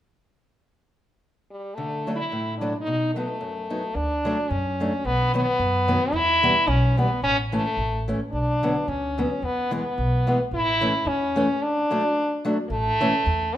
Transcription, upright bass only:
3.95 D2
4.50 F#2
5.05 B1
5.59 F#2
6.13 E2
6.67 B1
7.22 A1
7.77 A1
8.33 B1
8.88 D2
9.42 E2
9.98 B1
10.51 A1
11.05 E2
12.70 A1
13.26 E2

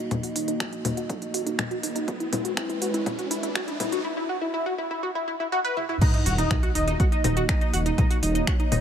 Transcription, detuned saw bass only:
0.36 D#1
0.85 D#1
1.34 D#1
1.83 D#1
2.32 D#1
2.82 D#1
3.31 D#1
3.80 D#1
6.26 D#1
6.75 D#1
7.24 D#1
7.73 D#1
8.23 D#1
8.72 D#1

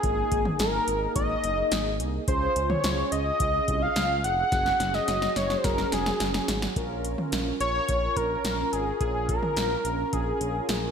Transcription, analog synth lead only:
Already playing: G#4
0.60 A#4
1.16 D#5
2.28 C5
2.70 C#5
3.12 D#5
3.82 F5
4.24 F#5
4.94 D#5
5.36 C#5
5.57 C5
5.64 A#4
5.92 G#4
7.60 C#5
8.17 A#4
8.73 G#4
9.01 G#4
9.29 A#4
10.13 G#4

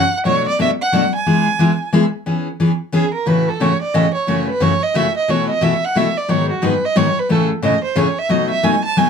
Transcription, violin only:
Already playing: F#5
0.27 C#5
0.48 D5
0.61 E5
0.81 F#5
1.16 G#5
2.95 G#4
3.14 A#4
3.27 B4
3.49 A4
3.62 C#5
3.82 D5
3.93 D#5
4.14 C#5
4.50 B4
4.62 C#5
4.83 D#5
4.96 E5
5.17 D#5
5.30 C#5
5.50 D#5
5.63 E5
5.84 F#5
5.97 E5
6.17 D5
6.30 C#5
6.50 F#4
6.64 B4
6.85 D#5
6.97 C#5
7.19 B4
7.31 A4
7.64 D#5
7.84 C5
7.98 C#5
8.19 E5
8.30 D#5
8.51 E5
8.64 G#5
8.85 A5
8.98 G#5

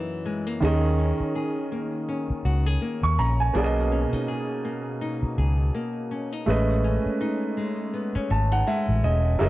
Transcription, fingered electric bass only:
0.62 D#2
1.20 muted fingered electric bass stroke
2.30 muted fingered electric bass stroke
2.45 C#2
3.03 D#2
3.18 A#1
3.55 B1
4.13 muted fingered electric bass stroke
5.23 muted fingered electric bass stroke
5.38 C#2
6.48 A1
7.06 muted fingered electric bass stroke
8.15 muted fingered electric bass stroke
8.31 G#1
8.89 A1
9.04 E1
9.41 F#1

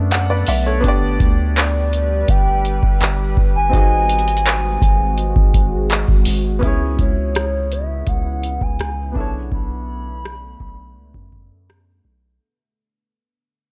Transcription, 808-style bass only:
Already playing: F#2
0.48 B1
0.84 G1
1.20 D2
2.29 G1
2.83 G1
3.01 G1
3.37 G1
3.74 G#1
4.82 G#1
5.36 G#1
6.09 G#1
6.27 G#1
6.63 C#2
6.99 C#2
8.07 C#2
8.61 C#2
8.80 C#2
9.16 B1
9.52 B1
10.60 B1
10.96 C#2
11.14 F#2
12.05 B1

